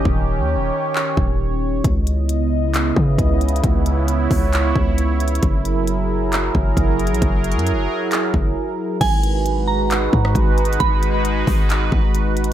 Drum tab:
CC |------------------------------------------------|------------------------------------------------|------------------------------------------------|------------------------------------------------|
HH |------------------------------------------------|x-----x-----x-----------x-----------x-----x-x-x-|x-----x-----x-----o-----x-----------x-----x-x-x-|x-----x-----x-----------x-----------x-----x-x-x-|
CP |------------------------x-----------------------|------------------------x-----------------------|------------------------x-----------------------|------------------------x-----------------------|
SD |------------------------------------------------|------------------------------------------------|------------------------------------------------|------------------------------------------------|
BD |o-----------------------------o-----------------|o-----------------------------o-----o-----------|o-----------------o-----------o-----------------|o-----------------------------o-----o-----------|

CC |------------------------------------------------|x-----------------------------------------------|------------------------------------------------|
HH |x-----x-x-x-x-----------x-----------------------|x-----x-----x-----------x-----------x-----x-x-x-|x-----x-----x-----o-----x-----------x-----x-x---|
CP |------------------------x-----------------------|------------------------x-----------------------|------------------------x-----------------------|
SD |------------------------------------------------|---------------------------------r--------------|------------------------------------------------|
BD |o-----------------------------o-----------------|o-----------------------------o-----o-----------|o-----------------o-----------o-----------------|